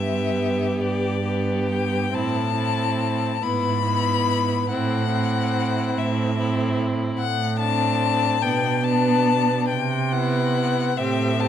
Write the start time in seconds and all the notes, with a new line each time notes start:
Already playing: G2 B3 G4 E5
0.80 G2 D5
1.24 B3 G4
1.69 G5
2.12 A2 C4 E4 A5
2.55 C4 E4
3.41 G#2 B3 E4 B5
3.85 B3 E4
4.69 A2 C4 E4 F#5
5.12 C4 E4
5.96 A2 E5
6.38 C4 E4
7.18 A2 F#5
7.59 C4 D4 A5
8.42 B2 B3 D4 G5
8.83 B3 D4 A5
9.69 C3 G5
10.12 B3 E4 F#5
10.97 A2 C4 G4 E5
11.40 C4 G4 A5